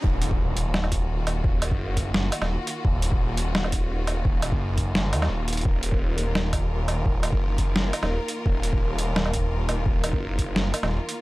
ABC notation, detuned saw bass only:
X:1
M:4/4
L:1/16
Q:"Swing 16ths" 1/4=171
K:Ebm
V:1 name="Detuned saw bass" clef=bass
E,,,16 | E,,,3 G,,,6- G,,, z E,,,2 z3 | E,,,16 | E,,,3 G,,,6- G,,, E,,2 E,,,4 |
E,,,16 | E,,,3 G,,,6- G,,, z E,,,2 z3 | E,,,16 | E,,,3 G,,,6- G,,, z E,,,2 z3 |]